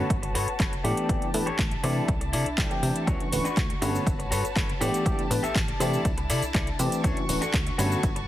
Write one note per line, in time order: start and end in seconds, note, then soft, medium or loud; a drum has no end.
0.00 0.15 F#4 medium
0.00 0.83 F#4 medium
0.00 0.15 A4 medium
0.00 0.15 B4 medium
0.00 0.83 B4 medium
0.00 0.15 C#5 loud
0.00 0.84 C#5 medium
0.00 0.83 A5 medium
0.10 0.36 G1 medium
0.10 kick loud
0.10 closed hi-hat medium
0.22 muted clean electric guitar stroke loud
0.22 closed hi-hat medium
0.22 tambourine soft
0.34 0.47 G2 loud
0.34 0.47 F#4 medium
0.34 0.47 A4 medium
0.34 0.47 B4 medium
0.34 0.48 C#5 medium
0.34 open hi-hat loud
0.34 tambourine medium
0.47 0.57 G1 soft
0.47 closed hi-hat soft
0.47 tambourine soft
0.59 0.77 G1 medium
0.59 0.72 F#4 medium
0.59 0.72 A4 medium
0.59 0.72 B4 medium
0.59 0.72 C#5 loud
0.59 kick loud
0.59 clap loud
0.59 closed hi-hat medium
0.73 closed hi-hat soft
0.73 tambourine soft
0.84 0.93 A2 loud
0.84 1.06 E3 medium
0.84 1.06 A3 medium
0.84 1.06 B3 medium
0.84 1.06 D4 medium
0.84 3.79 D4 medium
0.84 1.24 G4 medium
0.84 1.06 G4 loud
0.84 1.83 G4 medium
0.84 1.24 A4 medium
0.84 1.24 D5 loud
0.84 3.05 A5 medium
0.84 open hi-hat medium
0.84 tambourine loud
0.97 closed hi-hat medium
0.97 tambourine soft
1.09 1.18 A1 loud
1.09 1.29 E3 medium
1.09 1.29 A3 medium
1.09 1.29 B3 medium
1.09 1.29 D4 medium
1.09 1.29 G4 loud
1.09 kick loud
1.09 closed hi-hat medium
1.22 closed hi-hat soft
1.22 tambourine soft
1.34 1.43 A2 loud
1.34 1.46 E3 medium
1.34 1.46 A3 medium
1.34 1.46 B3 medium
1.34 1.47 D4 medium
1.34 1.47 B4 medium
1.34 muted clean electric guitar stroke soft
1.34 open hi-hat loud
1.34 tambourine loud
1.46 1.56 A1 soft
1.46 1.59 G4 medium
1.46 1.59 A4 medium
1.46 1.59 C#5 loud
1.46 closed hi-hat soft
1.46 tambourine soft
1.59 1.76 A1 medium
1.59 kick loud
1.59 clap loud
1.59 closed hi-hat medium
1.71 muted clean electric guitar stroke soft
1.71 closed hi-hat soft
1.71 tambourine soft
1.83 2.01 C3 loud
1.83 2.03 E3 medium
1.83 2.03 A3 medium
1.83 2.04 C4 medium
1.83 2.04 D4 medium
1.83 2.13 E4 medium
1.83 3.06 E4 medium
1.83 2.04 G4 loud
1.83 2.13 A4 medium
1.83 2.14 D5 loud
1.83 open hi-hat medium
1.83 tambourine medium
1.96 tambourine soft
2.08 2.34 C2 loud
2.08 kick loud
2.08 closed hi-hat medium
2.08 tambourine medium
2.21 muted clean electric guitar stroke loud
2.21 closed hi-hat medium
2.21 tambourine soft
2.33 2.45 C3 loud
2.33 2.46 E4 medium
2.33 2.46 A4 medium
2.33 2.46 D5 medium
2.33 open hi-hat loud
2.33 tambourine loud
2.46 2.55 C2 soft
2.46 closed hi-hat soft
2.46 tambourine soft
2.57 2.67 C2 loud
2.57 2.70 E4 medium
2.57 2.71 A4 medium
2.57 2.71 D5 medium
2.57 3.04 G5 medium
2.57 kick loud
2.57 clap loud
2.57 closed hi-hat medium
2.70 3.04 E3 medium
2.70 3.05 A3 medium
2.70 3.05 C4 medium
2.70 3.05 D4 medium
2.70 3.05 G4 loud
2.70 closed hi-hat soft
2.70 tambourine soft
2.83 2.91 C3 medium
2.83 muted clean electric guitar stroke soft
2.83 open hi-hat medium
2.83 tambourine medium
2.95 closed hi-hat soft
2.95 tambourine soft
3.07 3.16 D2 loud
3.07 3.27 E3 medium
3.07 3.27 A3 medium
3.07 3.27 C#4 medium
3.07 3.20 D4 loud
3.07 3.27 D4 medium
3.07 3.81 F#4 medium
3.07 3.27 F#4 loud
3.07 3.20 F#4 loud
3.07 3.20 C#5 loud
3.07 3.81 C#6 medium
3.07 kick loud
3.07 closed hi-hat medium
3.07 tambourine soft
3.07 shaker soft
3.20 closed hi-hat soft
3.20 tambourine soft
3.32 3.41 D1 loud
3.32 3.45 E3 medium
3.32 3.45 A3 medium
3.32 3.45 C#4 medium
3.32 3.45 D4 medium
3.32 3.45 B4 medium
3.32 muted clean electric guitar stroke soft
3.32 open hi-hat loud
3.32 tambourine medium
3.32 shaker medium
3.44 3.57 D4 medium
3.44 3.57 F#4 medium
3.44 3.57 B4 medium
3.44 closed hi-hat soft
3.44 tambourine soft
3.44 shaker soft
3.57 3.74 D2 medium
3.57 kick loud
3.57 clap loud
3.57 closed hi-hat medium
3.57 shaker soft
3.70 muted clean electric guitar stroke soft
3.70 closed hi-hat soft
3.70 tambourine soft
3.82 3.99 G2 medium
3.82 4.02 D3 medium
3.82 4.02 A3 medium
3.82 4.02 B3 medium
3.82 4.02 C#4 medium
3.82 4.12 F#4 medium
3.82 4.80 F#4 medium
3.82 4.02 F#4 loud
3.82 4.12 A4 medium
3.82 4.80 B4 medium
3.82 4.12 B4 medium
3.82 4.80 C#5 medium
3.82 4.12 C#5 medium
3.82 7.01 A5 medium
3.82 open hi-hat medium
3.82 tambourine loud
3.82 shaker medium
3.95 tambourine soft
3.95 shaker soft
4.07 4.33 G1 medium
4.07 kick loud
4.07 closed hi-hat medium
4.07 tambourine medium
4.07 shaker soft
4.19 muted clean electric guitar stroke loud
4.19 closed hi-hat soft
4.19 tambourine soft
4.31 4.43 G2 loud
4.31 4.44 F#4 medium
4.31 4.44 A4 medium
4.31 4.44 B4 medium
4.31 4.44 C#5 medium
4.31 open hi-hat loud
4.31 tambourine medium
4.31 shaker medium
4.44 4.54 G1 soft
4.44 closed hi-hat soft
4.44 tambourine soft
4.44 shaker soft
4.56 4.73 G1 medium
4.56 4.69 F#4 medium
4.56 4.69 A4 medium
4.56 4.69 B4 medium
4.56 4.69 C#5 loud
4.56 kick loud
4.56 clap loud
4.56 closed hi-hat medium
4.56 shaker soft
4.69 closed hi-hat soft
4.69 tambourine soft
4.80 4.90 A2 loud
4.80 5.03 E3 medium
4.80 5.03 A3 medium
4.80 5.03 B3 medium
4.80 7.75 D4 medium
4.80 5.03 D4 medium
4.80 5.21 G4 medium
4.80 5.79 G4 medium
4.80 5.03 G4 loud
4.80 5.21 A4 medium
4.80 5.21 D5 loud
4.80 open hi-hat medium
4.80 tambourine medium
4.80 shaker medium
4.94 closed hi-hat soft
4.94 tambourine soft
4.94 shaker soft
5.05 5.14 A1 loud
5.05 5.25 E3 medium
5.05 5.25 A3 medium
5.05 5.25 B3 medium
5.05 5.26 D4 medium
5.05 5.26 G4 loud
5.05 kick loud
5.05 closed hi-hat medium
5.05 tambourine soft
5.05 shaker soft
5.19 closed hi-hat soft
5.19 tambourine soft
5.30 5.39 A2 loud
5.30 5.43 E3 medium
5.30 5.43 A3 medium
5.30 5.43 B3 medium
5.30 5.43 D4 medium
5.30 5.43 B4 medium
5.30 muted clean electric guitar stroke soft
5.30 open hi-hat loud
5.30 tambourine medium
5.30 shaker medium
5.43 5.53 A1 soft
5.43 5.55 G4 medium
5.43 5.55 A4 medium
5.43 5.56 E5 medium
5.43 closed hi-hat soft
5.43 tambourine soft
5.43 shaker soft
5.55 5.72 A1 medium
5.55 kick loud
5.55 clap loud
5.55 closed hi-hat medium
5.55 shaker soft
5.68 muted clean electric guitar stroke soft
5.68 closed hi-hat soft
5.68 tambourine soft
5.80 5.97 C3 medium
5.80 6.00 E3 medium
5.80 6.00 A3 medium
5.80 6.00 C4 medium
5.80 6.00 D4 medium
5.80 6.10 E4 medium
5.80 7.03 E4 medium
5.80 6.00 G4 loud
5.80 6.10 A4 medium
5.80 6.10 D5 loud
5.80 open hi-hat medium
5.80 tambourine medium
5.80 shaker medium
5.93 tambourine soft
5.93 shaker soft
6.05 6.31 C2 medium
6.05 kick loud
6.05 closed hi-hat medium
6.05 tambourine soft
6.05 shaker soft
6.17 muted clean electric guitar stroke loud
6.17 closed hi-hat medium
6.17 tambourine soft
6.30 6.42 C3 loud
6.30 6.42 E4 medium
6.30 6.42 A4 medium
6.30 6.43 D5 loud
6.30 open hi-hat loud
6.30 tambourine medium
6.30 shaker medium
6.42 6.52 C2 soft
6.42 closed hi-hat soft
6.42 tambourine soft
6.42 shaker soft
6.54 6.72 C2 loud
6.54 6.67 E4 medium
6.54 6.67 A4 medium
6.54 6.67 D5 loud
6.54 kick loud
6.54 clap loud
6.54 closed hi-hat medium
6.54 shaker soft
6.67 closed hi-hat soft
6.67 tambourine soft
6.79 6.88 C3 loud
6.79 7.01 E3 medium
6.79 7.01 A3 medium
6.79 7.02 C4 medium
6.79 7.02 D4 medium
6.79 7.02 G4 loud
6.79 muted clean electric guitar stroke soft
6.79 open hi-hat medium
6.79 tambourine loud
6.79 shaker medium
6.91 closed hi-hat soft
6.91 tambourine soft
6.91 shaker soft
7.04 7.13 D2 medium
7.04 7.24 E3 loud
7.04 7.24 A3 medium
7.04 7.17 D4 loud
7.04 7.17 F#4 loud
7.04 8.28 F#4 medium
7.04 7.17 C#5 loud
7.04 7.77 C#6 medium
7.04 kick loud
7.04 closed hi-hat medium
7.04 tambourine soft
7.04 shaker soft
7.16 closed hi-hat soft
7.16 tambourine soft
7.28 7.38 D1 loud
7.28 7.41 E3 medium
7.28 7.41 A3 medium
7.28 7.41 C#4 medium
7.28 7.42 D4 medium
7.28 7.42 B4 medium
7.28 muted clean electric guitar stroke soft
7.28 open hi-hat loud
7.28 tambourine medium
7.28 shaker medium
7.41 7.54 D4 medium
7.41 7.54 F#4 medium
7.41 7.54 A4 loud
7.41 closed hi-hat soft
7.41 tambourine soft
7.41 shaker soft
7.54 7.71 D2 medium
7.54 kick loud
7.54 clap loud
7.54 closed hi-hat medium
7.54 shaker soft
7.66 muted clean electric guitar stroke soft
7.66 closed hi-hat soft
7.66 tambourine soft
7.78 7.96 G2 medium
7.78 7.98 D3 medium
7.78 7.98 A3 medium
7.78 7.98 B3 medium
7.78 7.98 C#4 medium
7.78 8.08 F#4 medium
7.78 7.98 F#4 loud
7.78 8.08 A4 medium
7.78 8.28 B4 medium
7.78 8.09 B4 medium
7.78 8.09 C#5 loud
7.78 8.28 A5 medium
7.78 8.28 C#6 medium
7.78 open hi-hat medium
7.78 tambourine medium
7.78 shaker medium
7.91 tambourine soft
7.91 shaker soft
8.03 8.28 G1 medium
8.03 kick loud
8.03 closed hi-hat medium
8.03 tambourine medium
8.03 shaker soft
8.16 muted clean electric guitar stroke loud
8.16 closed hi-hat medium
8.16 tambourine soft